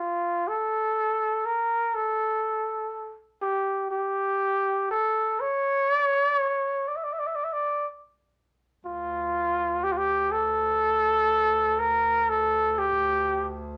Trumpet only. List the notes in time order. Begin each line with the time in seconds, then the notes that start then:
Already playing: F4
0.48 A4
1.46 A#4
1.95 A4
3.42 G4
3.91 G4
4.91 A4
5.40 C#5
6.24 D5
6.35 C#5
6.88 D5
6.96 E5
7.04 D5
7.13 E5
7.19 D5
7.27 E5
7.35 D5
7.44 E5
7.53 D5
8.86 F4
9.84 G4
9.92 F4
9.97 G4
10.32 A4
11.79 A#4
12.29 A4
12.78 G4